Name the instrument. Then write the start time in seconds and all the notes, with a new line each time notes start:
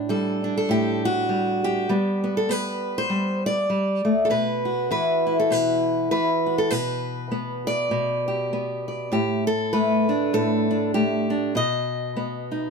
steel-string acoustic guitar
Already playing: A2 D4
0.09 G3 A4
0.44 D4
0.57 A4
0.69 A2 G4
1.05 F#4
1.29 G3
1.64 G4
1.89 G3 B3
2.24 B3
2.37 A4
2.49 B3 B4
2.98 C5
3.10 G3
3.46 D5
3.70 G3
4.05 A3
4.25 A4
4.30 B2 B4
4.65 F#4
4.91 E3 B4
5.27 E4
5.39 A4
5.50 B2 B4
6.11 E3 B4
6.46 F#4
6.58 A4
6.71 B2 B4
7.31 B3
7.67 D5
7.91 B2
8.28 G4
8.53 B3
8.88 D5
9.12 A2 G4
9.47 A4
9.73 A3 B4
10.09 D4
10.33 A2 A4
10.71 D4
10.94 A3 G4
11.30 D4
11.55 B2 D#5
12.17 B3
12.52 D#4